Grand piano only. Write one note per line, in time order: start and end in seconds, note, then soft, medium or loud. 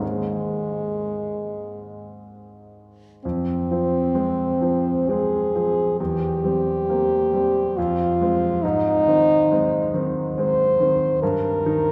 0.00 3.17 G#2 soft
0.00 3.17 D#3 soft
0.00 3.18 G#3 soft
0.00 3.19 C4 soft
3.25 5.96 F2 soft
3.71 4.11 F3 soft
3.71 4.12 C4 soft
4.15 4.58 G#3 soft
4.15 4.58 C4 soft
4.61 5.05 F3 soft
4.61 5.05 C4 soft
5.09 5.51 G#3 soft
5.09 5.51 C4 soft
5.55 5.96 F3 soft
5.55 5.96 C4 soft
6.00 7.74 E2 soft
6.44 6.84 G3 soft
6.44 6.85 C4 soft
6.90 7.30 A#3 soft
6.90 7.30 C4 soft
7.33 7.73 G3 soft
7.33 7.74 C4 soft
7.78 8.61 F2 soft
8.21 8.59 G#3 soft
8.21 8.60 C4 soft
8.65 11.19 G#2 soft
9.07 9.46 D#3 soft
9.07 9.46 C4 soft
9.51 9.90 G#3 soft
9.51 9.90 C4 soft
9.94 10.33 D#3 soft
9.94 10.33 C4 soft
10.38 10.76 G#3 soft
10.38 10.76 C4 soft
10.81 11.18 D#3 soft
10.81 11.19 C4 soft
11.23 11.92 G2 soft
11.66 11.92 D#3 soft
11.66 11.92 D#4 soft